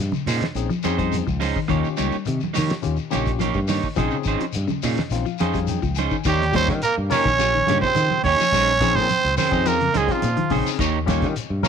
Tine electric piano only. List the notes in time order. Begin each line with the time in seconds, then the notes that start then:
0.40 D#4 G#4
0.56 C4 C#4 D#4 G#4
0.84 C4 C#4 D#4 G#4
1.70 C#4 F4 G4
2.68 F4 G4
2.82 C#4 F4 G4
3.11 C#4 F4 G4
3.96 C4 C#4 D#4 G#4
4.83 D#5
4.98 D#4 G#4
5.11 C4 C#4 D#4 F4 F5
5.40 C4 C#4 D#4 G#4 F5
5.69 G5
5.97 G#5
6.52 C#4 F4 G4
7.10 C#4 F4 A#4
7.38 C#4 F4 G4
7.66 C#3 F4 G4
8.82 C4 C#4 D#4 G#4
9.37 D#4 A#4
9.51 C4 C#4 D#4 G#4
10.07 C4 C#4 D#4 G#4
10.51 C4 C#4 D#4 G#4
11.06 C#4 F4 G4
11.63 C#4 F4 A#4